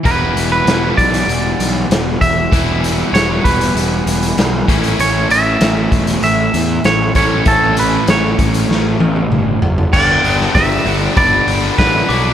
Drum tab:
CC |----------------|----------------|----------------|----------------|
HH |x-x-x-xxx-x-x-x-|x-x-x-xxx-xxx-xx|x-x-x-xxx-x-x-x-|x-x-x-xx--------|
SD |----o-------o---|----o-------o---|----o--o----o---|----o---o-------|
T1 |----------------|----------------|----------------|----------oo----|
T2 |----------------|----------------|----------------|------------o---|
FT |----------------|----------------|----------------|--------------oo|
BD |o-----o-------o-|o-----o-------o-|------o-------o-|o-----o---------|

CC |x---------------|
HH |--o-o-o-o-o-o-o-|
SD |---oo-------o---|
T1 |----------------|
T2 |----------------|
FT |----------------|
BD |o---o---o---o---|